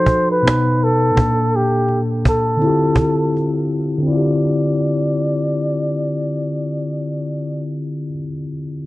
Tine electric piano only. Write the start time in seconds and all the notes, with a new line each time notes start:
Already playing: F3 D#4 F#4 A4
0.42 B2 B3 D#4
0.47 B4
1.12 A#2 A#3
1.18 D4 A4
2.57 D3 C4
2.62 E4 F4
2.66 G4
3.98 D3
4.02 C4
4.07 E4
4.12 F4
4.17 G4